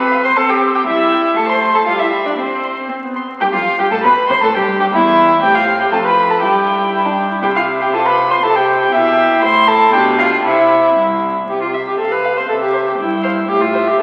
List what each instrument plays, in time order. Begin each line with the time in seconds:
Already playing: viola C4
0.00 cello B4, violin B5
0.11 violin F5
0.24 cello C5, violin C6
0.36 viola C4, cello A4, violin A5
0.49 cello G4, violin G5
0.61 violin G5
0.75 cello G4, violin G5
0.86 viola G3, cello E4, violin E5
1.12 violin G5
1.36 viola A3, cello A4, violin A5
1.48 cello C5, violin C6
1.62 violin A5
1.74 cello A4, violin A5
1.86 viola G3, cello F4, violin F5
1.98 cello E4, violin E5
2.13 violin B5
2.25 cello D4, violin D5
2.38 viola C4, cello C4, violin C5
2.64 violin C6
2.89 viola C4
3.02 viola B3
3.16 violin C6
3.28 viola C4
3.40 cello G2, viola G4, violin G4 G5
3.53 cello F2, viola F4, violin F4 F5
3.78 cello G2, viola G4, violin G4 G5
3.91 cello A2, viola A4, violin A4 A5
4.04 cello B2, viola B4, violin B4 B5
4.29 cello C3, viola C5, violin C5 C6
4.41 cello A2, viola A4, violin A4 A5
4.54 cello G2, viola G4, violin G4 G5
4.79 cello G2, viola G4, violin G4 G5
4.91 cello E2, viola E4, violin E4 E5
5.41 cello A2, violin C4 G5, viola G4
5.55 viola F4, violin F5
5.80 viola G4, violin G5
5.92 cello F2, violin F4 A5, viola A4
6.05 viola B4, violin B5
6.29 viola A4, violin A5
6.41 cello G2, violin E4 G5, viola G4
6.92 cello G2, violin E4
7.05 violin D4
7.31 violin E4
7.42 cello C3, violin E4 G5, viola G4
7.55 viola F4, violin F5
7.81 viola G4, violin G5
7.93 cello C3, violin F4 A5, viola A4
8.06 viola B4, violin B5
8.30 viola C5, violin C6
8.43 cello C3, violin E4 A5, viola A4
8.56 viola G4, violin G5
8.81 viola G4, violin G5
8.93 cello B2, viola E4, violin G4 E5
9.42 cello A2, violin E4 C6, viola C5
9.67 viola A4, violin A5
9.92 cello B2, violin D4 G5, viola G4
10.19 viola F4, violin F5
10.44 cello C3, viola E4, violin E4 E5
10.96 cello C2
11.48 cello C3, viola G4
11.61 viola F4
11.74 violin E5
11.87 viola G4
11.98 cello C3, viola A4, violin F5
12.12 viola B4
12.24 violin F5
12.37 viola C5
12.49 cello C3, viola A4, violin E5
12.61 viola G4
12.73 violin C5
12.86 viola G4
12.98 cello G2, viola E4, violin G5
13.23 violin C5 F5
13.47 cello A2, viola G4, violin E5
13.61 viola F4
13.74 violin C5
13.87 viola G4
13.98 cello F2, viola A4